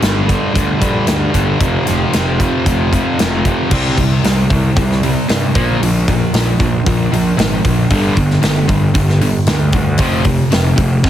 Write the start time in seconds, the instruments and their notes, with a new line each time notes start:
0.01 picked electric bass G1, distorted electric guitar G2 D3 G3, snare, closed hi-hat
0.28 distorted electric guitar G2 D3 G3, kick, closed hi-hat
0.53 picked electric bass D2, distorted electric guitar G2 D3 G3, kick, closed hi-hat
0.80 picked electric bass A#1, distorted electric guitar G2 D3 G3, kick, closed hi-hat
1.07 picked electric bass D2, distorted electric guitar G2 D3 G3, snare, closed hi-hat
1.32 picked electric bass G1, distorted electric guitar G2 D3 G3, kick, closed hi-hat
1.60 picked electric bass F1, distorted electric guitar F2 C3 F3, kick, closed hi-hat
1.86 picked electric bass F1, distorted electric guitar F2 C3 F3, snare, closed hi-hat
2.13 picked electric bass F1, distorted electric guitar F2 C3 F3, snare, closed hi-hat
2.40 distorted electric guitar F2 C3 F3, kick, closed hi-hat
2.65 picked electric bass F1, distorted electric guitar F2 C3 F3, kick, closed hi-hat
2.93 distorted electric guitar F2 C3 F3, kick, closed hi-hat
3.19 picked electric bass F1, distorted electric guitar F2 C3 F3, snare, closed hi-hat
3.45 distorted electric guitar F2 C3 F3, kick, closed hi-hat
3.71 picked electric bass C2, distorted electric guitar C3 G3 C4, kick, crash
3.98 picked electric bass C2, distorted electric guitar C3 G3, kick, open hi-hat
4.24 picked electric bass C2, distorted electric guitar C3 G3, snare, open hi-hat
4.50 picked electric bass C2, distorted electric guitar C3 G3, kick, open hi-hat
4.76 picked electric bass C2, distorted electric guitar C3 G3, kick, open hi-hat
4.91 snare
5.03 distorted electric guitar C3 G3, open hi-hat
5.28 picked electric bass G2, distorted electric guitar C3 G3, snare, open hi-hat
5.54 picked electric bass A#1, distorted electric guitar A#2 F3 A#3, kick, open hi-hat
5.81 picked electric bass A#1, distorted electric guitar A#2 F3, open hi-hat
6.08 distorted electric guitar A#2 F3, kick, open hi-hat
6.33 picked electric bass A#1, distorted electric guitar A#2 F3, snare, open hi-hat
6.59 picked electric bass A#1, distorted electric guitar A#2 F3, kick, open hi-hat
6.86 picked electric bass A#1, distorted electric guitar A#2 F3, kick, open hi-hat
7.11 picked electric bass A#1, distorted electric guitar A#2 F3, open hi-hat
7.37 picked electric bass G#1, distorted electric guitar A#2 F3, snare, open hi-hat
7.65 picked electric bass A#1, distorted electric guitar A#2 F3, kick, open hi-hat
7.90 picked electric bass G1, distorted electric guitar G2 D3 G3, kick, open hi-hat
8.16 picked electric bass G1, distorted electric guitar G2 D3, kick, open hi-hat
8.30 snare
8.42 picked electric bass G1, distorted electric guitar G2 D3, snare, open hi-hat
8.68 picked electric bass G1, distorted electric guitar G2 D3, kick, open hi-hat
8.94 picked electric bass G1, distorted electric guitar G2 D3, kick, open hi-hat
9.09 snare
9.21 distorted electric guitar G2 D3, open hi-hat
9.46 picked electric bass D2, distorted electric guitar G2 D3, snare, open hi-hat
9.72 distorted electric guitar G2 D3, kick, open hi-hat
9.97 picked electric bass F1, distorted electric guitar F2 C3 F3, kick, open hi-hat
10.24 distorted electric guitar F2 C3, kick, open hi-hat
10.51 picked electric bass F1, distorted electric guitar F2 C3, snare, open hi-hat
10.76 picked electric bass F1, distorted electric guitar F2 C3, kick, open hi-hat
11.03 picked electric bass F1, distorted electric guitar F2 C3, kick, snare